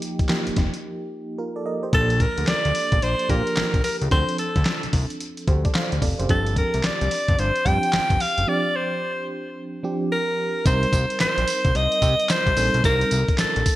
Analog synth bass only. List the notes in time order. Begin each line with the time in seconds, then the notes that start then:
0.20 F1
0.47 F1
0.57 F1
1.93 A#1
2.38 D2
2.48 D2
2.65 D2
2.92 A#1
3.03 A#1
3.30 A#2
3.57 A#1
3.74 A#1
4.02 C#2
4.11 D2
4.56 D2
4.84 C2
4.93 C2
5.48 D2
5.92 D2
6.02 F1
6.20 F#1
6.30 G1
6.74 C2
6.84 C2
7.02 C2
7.29 G1
7.39 G1
7.66 G2
7.93 G1
8.10 G1
8.38 F#1
10.66 C2
10.93 C2
11.21 A#1
11.38 A#1
11.65 C2
11.75 C2
12.02 C3
12.47 C2
12.57 A#1
12.74 B1
12.84 C2
13.12 C2
13.39 A#1
13.56 A#1